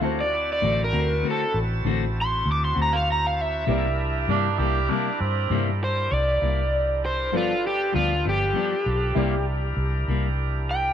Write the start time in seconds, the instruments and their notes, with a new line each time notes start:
Already playing: overdriven electric guitar F5
0.01 fingered electric bass D2, clean electric guitar D3 A3 C4 F#4, tonewheel organ G3 C#4 F#4 A#4, upright piano E4 F#4 C5 A5
0.20 overdriven electric guitar D5
0.33 tonewheel organ C4 E4 F#4 A5
0.53 overdriven electric guitar D5
0.62 fingered electric bass A1, clean electric guitar D3 A3 C4 F#4
0.84 overdriven electric guitar A#4
0.92 fingered electric bass D2, clean electric guitar A3 C4 F#4
1.23 clean electric guitar D3 A3 C4 F#4
1.31 overdriven electric guitar A4
1.54 fingered electric bass A1
1.85 fingered electric bass A1, clean electric guitar D3 A3 C4 F#4
2.21 overdriven electric guitar C6
2.46 fingered electric bass D2
2.52 overdriven electric guitar D6
2.65 overdriven electric guitar C6
2.75 fingered electric bass D2, clean electric guitar A3 C4 F#4
2.82 overdriven electric guitar A#5
2.93 overdriven electric guitar F5
3.12 overdriven electric guitar A#5
3.27 overdriven electric guitar F5
3.41 overdriven electric guitar E5
3.66 fingered electric bass C2, clean electric guitar C3 G3 A#3 E4, upright piano E4 G4 A#4, tonewheel organ G4
3.70 tonewheel organ D4 E4 A#4, upright piano D5
4.28 fingered electric bass G2, clean electric guitar C3 G3 A#3 E4, tenor saxophone D4
4.58 fingered electric bass C2, clean electric guitar G3 A#3 E4, tenor saxophone G4
4.89 clean electric guitar C3 G3 A#3 E4, tenor saxophone D4
5.20 fingered electric bass G2, tenor saxophone C4
5.50 fingered electric bass G2, clean electric guitar C3 G3 A#3 E4
5.84 overdriven electric guitar C5
6.12 fingered electric bass C2, overdriven electric guitar D5
6.42 fingered electric bass C2, clean electric guitar G3 A#3 E4
7.05 overdriven electric guitar C5
7.32 fingered electric bass G1, clean electric guitar G2 F3 B3 D4, upright piano F4 A4 B4 D5, tonewheel organ F4 B4
7.37 tonewheel organ D4 A4, overdriven electric guitar F4
7.67 overdriven electric guitar G4
7.92 fingered electric bass D2, clean electric guitar G2 F3 B3 D4, overdriven electric guitar F4
8.24 fingered electric bass G1, clean electric guitar F3 B3 D4
8.29 overdriven electric guitar G4
8.53 clean electric guitar G2 F3 B3 D4
8.86 fingered electric bass B1
9.15 fingered electric bass C2, clean electric guitar C3 G3 A#3 E4, tonewheel organ D4 E4 G4 A#4, upright piano E4 G4 A#4 D5
9.77 fingered electric bass C2
10.08 fingered electric bass C2, clean electric guitar G3 A#3 E4
10.71 overdriven electric guitar G5